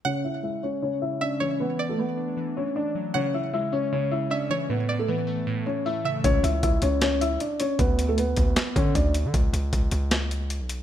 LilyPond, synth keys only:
\new Staff \with { instrumentName = "Synth keys" } { \clef bass \time 4/4 \key cis \phrygian \tempo 4 = 155 cis8 cis8 gis8 cis'8 cis8 cis8 cis'8 e8 | e8 e8 a8 d'8 e8 e8 d'8 fis8 | cis8 cis8 gis8 cis'8 cis8 cis8 cis'8 e8 | a,8 a,8 e8 a8 a,8 a,8 a8 cis8 |
r1 | r1 | r1 | }